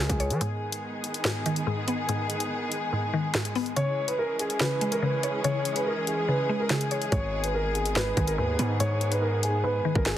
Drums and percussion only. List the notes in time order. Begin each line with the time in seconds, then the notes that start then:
0.09 kick, closed hi-hat
0.20 closed hi-hat
0.30 closed hi-hat
0.41 closed hi-hat
0.72 closed hi-hat
1.04 closed hi-hat
1.14 closed hi-hat
1.25 snare
1.46 closed hi-hat
1.56 closed hi-hat
1.88 closed hi-hat
2.09 closed hi-hat
2.30 closed hi-hat
2.40 closed hi-hat
2.72 closed hi-hat
3.35 snare
3.45 closed hi-hat
3.55 open hi-hat
3.66 closed hi-hat
3.76 closed hi-hat
4.08 closed hi-hat
4.39 closed hi-hat
4.50 closed hi-hat
4.60 snare
4.81 closed hi-hat
4.92 closed hi-hat
5.23 closed hi-hat
5.44 closed hi-hat
5.65 closed hi-hat
5.76 closed hi-hat
6.07 closed hi-hat
6.70 snare
6.81 closed hi-hat
6.91 closed hi-hat
7.02 closed hi-hat
7.12 kick, closed hi-hat
7.44 closed hi-hat
7.75 closed hi-hat
7.86 closed hi-hat
7.96 snare
8.17 kick, closed hi-hat
8.27 closed hi-hat
8.59 closed hi-hat
8.80 closed hi-hat
9.01 closed hi-hat
9.12 closed hi-hat
9.43 closed hi-hat
9.95 kick
10.06 snare